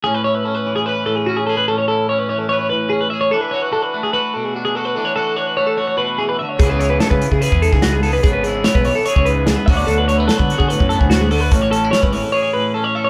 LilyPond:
<<
  \new Staff \with { instrumentName = "Clean electric guitar" } { \time 4/4 \key a \major \tempo 4 = 146 gis'16 b'16 cis''16 b'16 a'16 b'8 gis'16 b'8 a'16 gis'16 fis'16 gis'16 a'16 b'16 | a'16 cis''16 a'8 cis''16 b'16 cis''16 a'16 cis''16 cis''16 b'8 gis'16 b'16 e''16 cis''16 | a'16 b'16 cis''16 b'16 a'16 b'8 gis'16 b'8 a'16 gis'16 fis'16 gis'16 a'16 b'16 | a'16 cis''16 a'8 cis''16 b'16 cis''16 a'16 cis''16 cis''16 b'8 gis'16 b'16 e''16 cis''16 |
gis'16 b'16 cis''16 b'16 a'16 b'8 gis'16 b'8 a'16 gis'16 fis'16 gis'16 a'16 b'16 | gis'16 b'16 gis'8 cis''16 b'16 cis''16 a'16 cis''16 cis''16 b'8 gis'16 b'16 e''16 d''16 | a'16 b'16 cis''16 b'16 a'16 b'8 gis'16 b'8 a'16 gis'16 fis'16 gis'16 a'16 b'16 | a'16 cis''16 a'8 cis''16 b'16 cis''16 a'16 cis''16 cis''16 b'8 a'16 cis''16 e''16 cis''16 | }
  \new Staff \with { instrumentName = "Clean electric guitar" } { \time 4/4 \key a \major << { cis'8 e'8 cis'4 b'4 cis'8 gis'8 | cis'8 e'8 cis'4 b'4 cis'8 gis'8 | d'8 fis'8 d'4 fis'4 d'8 fis'8 | d'8 fis'8 d'4 fis'2 |
<e b e' gis'>8 e'8 b4 gis'4 b8 gis'8 | b8 e'8 b4 gis'4 b8 <fis b d' fis'>8 | d'8 a16 b8. fis'4 b8 fis'8 b8 | cis'8 cis'16 e'16 cis'4 gis'4 cis'8 a'8 | } \\ { a,4. e4 a,4. | a,4. e4 a,4. | e4. a4 b,4. | e4. a4 b,8 e8 d8 |
cis4. e4 gis,4. | cis4. e4 gis,4 d8~ | d4 fis4 a,4. d8 | a,4. e4 a,4. | } >> }
  \new Staff \with { instrumentName = "Fingered electric bass" } { \clef bass \time 4/4 \key a \major r1 | r1 | r1 | r1 |
cis,4~ cis,16 cis8 cis8 e,8 cis,4~ cis,16 | gis,,4~ gis,,16 b,,8 r8 cis,4~ cis,16 d,8 | d,4~ d,16 d8 d8 fis,8 d,4~ d,16 | a,,4~ a,,16 gis,,8 r2 r16 | }
  \new DrumStaff \with { instrumentName = "Drums" } \drummode { \time 4/4 r4 r4 r4 r4 | r4 r4 r4 r4 | r4 r4 r4 r4 | r4 r4 r4 r4 |
<hh bd>8 hh8 <hh sn>16 bd16 hh16 bd16 hh16 bd16 hh16 <bd sn>16 <hh sn>8 hho8 | <hh bd>8 hh8 <hh sn>16 bd16 hho8 hh16 bd16 hh8 <hh sn>8 <hho bd>8 | hh8 hh8 <hh sn>16 bd16 hh16 bd16 hh16 bd16 hh16 bd16 <hh sn>8 hho8 | <hh bd>8 hh8 <hh sn>16 bd16 hho8 r4 r4 | }
>>